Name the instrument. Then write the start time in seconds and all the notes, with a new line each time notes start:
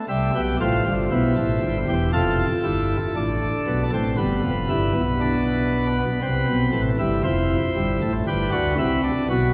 pipe organ
0.09 C2 C3 G3 E5
0.35 B1 B2 G4
0.60 A1 A2 F4 C5
0.87 G1 G2
1.11 B1 B2 E4
1.36 A1 A2
1.62 G1 G2
1.88 E1 E2 G4
2.13 F1 F2 F4 A4
2.64 G1 G2 E4
3.16 A1 A2 D4
3.67 B1 B2
3.94 A1 A2 C4
4.17 G1 G2 B3 B4
4.44 F1 F2
4.70 G1 G2 E4
4.95 B1 B2
5.21 D4
5.98 B3
6.22 C2 C3 C4
6.48 B1 B2
6.73 A1 A2
6.99 G1 G2 E4
7.24 F1 F2 E4 C5
7.76 G1 G2
8.02 A1 A2
8.27 G1 G2 G4 B4
8.51 D2 D3 F#4
8.78 C2 C3 E4
9.03 D4
9.29 B1 B2 F#4